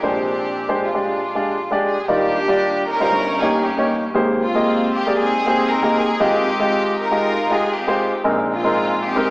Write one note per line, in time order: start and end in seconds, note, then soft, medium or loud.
0.03 2.05 A#1 medium
0.03 2.05 A#2 medium
0.03 0.45 G#3 medium
0.03 1.03 C4 medium
0.03 0.45 D4 medium
0.03 0.83 D4 medium
0.03 0.80 G4 medium
0.03 0.45 G4 medium
0.03 0.45 C5 medium
0.69 0.86 G#3 medium
0.69 0.87 D4 medium
0.69 0.87 G4 medium
0.69 0.87 C5 medium
0.84 1.83 G#3 medium
0.84 1.83 D4 medium
0.84 1.83 F4 medium
0.94 1.19 G#3 medium
0.94 1.19 D4 medium
0.94 1.19 G4 medium
0.94 1.19 D5 medium
1.35 1.56 G#3 medium
1.35 1.56 D4 medium
1.35 1.56 G4 medium
1.35 1.56 D5 medium
1.71 1.96 G#3 medium
1.71 1.96 D4 medium
1.71 1.96 G4 medium
1.71 1.97 D5 medium
1.87 2.07 G#4 medium
2.08 3.08 D#2 medium
2.08 3.08 D#3 medium
2.08 2.36 G3 medium
2.08 3.08 A#3 medium
2.08 3.08 D4 medium
2.08 2.36 D#4 medium
2.08 2.36 F4 medium
2.08 2.86 G4 medium
2.08 2.37 D5 medium
2.48 2.82 G3 medium
2.48 2.82 D4 medium
2.48 2.82 F4 medium
2.48 2.82 D5 medium
2.89 3.62 C#4 medium
2.89 3.88 D#4 medium
2.89 3.41 A#4 loud
3.00 3.11 G3 medium
3.00 3.12 D#4 medium
3.00 3.12 F4 medium
3.00 3.12 C5 medium
3.12 4.11 G1 medium
3.12 4.11 G2 medium
3.41 3.62 A#3 medium
3.41 3.62 D#4 medium
3.41 3.62 G4 medium
3.41 3.63 G#4 medium
3.41 3.63 C#5 medium
3.63 4.11 A#3 medium
3.63 4.11 C#4 medium
3.63 4.04 G4 medium
3.77 4.02 A#3 medium
3.77 4.02 D#4 medium
3.77 4.02 G4 medium
3.77 4.02 C#5 medium
4.14 6.16 G#1 medium
4.14 6.16 G#2 medium
4.14 4.42 A#3 medium
4.14 4.42 G4 medium
4.14 4.42 G#4 medium
4.14 4.42 C5 medium
4.43 5.43 A#3 medium
4.43 5.16 C4 medium
4.43 4.91 F4 medium
4.55 4.88 A#3 medium
4.55 4.88 G4 medium
4.55 4.88 G#4 medium
4.55 4.88 D#5 medium
4.95 5.17 G4 medium
5.06 5.30 A#3 medium
5.06 5.30 G4 medium
5.06 5.30 G#4 medium
5.06 5.31 D5 medium
5.17 6.16 C4 medium
5.17 6.16 D#4 medium
5.17 5.65 G#4 loud
5.46 5.67 A#3 medium
5.46 5.67 G4 medium
5.46 5.67 G#4 medium
5.46 5.68 C5 medium
5.68 5.98 A#4 loud
5.83 6.07 A#3 medium
5.83 6.07 G4 medium
5.83 6.07 G#4 medium
5.83 6.08 D#5 medium
5.97 6.19 G#4 loud
6.20 8.21 G#1 medium
6.20 8.21 G#2 medium
6.20 6.47 G#3 medium
6.20 7.18 C4 medium
6.20 7.00 D#4 medium
6.20 6.48 F4 medium
6.20 7.00 G4 loud
6.20 6.48 G4 medium
6.20 6.48 D#5 medium
6.60 6.93 G#3 medium
6.60 6.93 F4 medium
6.60 6.93 G4 medium
6.60 6.93 D#5 medium
7.01 7.73 D#4 medium
7.01 7.99 F4 medium
7.01 7.48 A#4 loud
7.11 7.35 G#3 medium
7.11 7.35 F4 medium
7.11 7.35 G4 medium
7.11 7.36 D#5 medium
7.50 7.71 G#3 medium
7.50 7.72 F4 medium
7.50 7.72 G4 medium
7.50 7.74 G#4 medium
7.50 7.72 D#5 medium
7.74 8.22 C4 medium
7.74 8.22 D#4 medium
7.74 8.14 G4 medium
7.87 8.12 G#3 medium
7.87 8.12 F4 medium
7.87 8.12 G4 medium
7.87 8.12 C5 medium
8.24 9.30 A#1 medium
8.24 9.30 A#2 medium
8.24 8.52 G#3 medium
8.24 8.52 C4 medium
8.24 8.52 D#4 medium
8.24 8.52 A#4 medium
8.54 9.30 G#3 medium
8.54 9.04 C4 medium
8.54 9.02 F4 medium
8.64 8.97 G#3 medium
8.64 8.97 C4 medium
8.64 8.97 D#4 medium
8.64 8.98 A#4 medium
9.05 9.30 C4 medium
9.05 9.30 D#4 medium
9.05 9.30 G4 medium
9.15 9.30 G#3 medium
9.15 9.30 C4 medium
9.15 9.30 D#4 medium
9.15 9.30 A#4 medium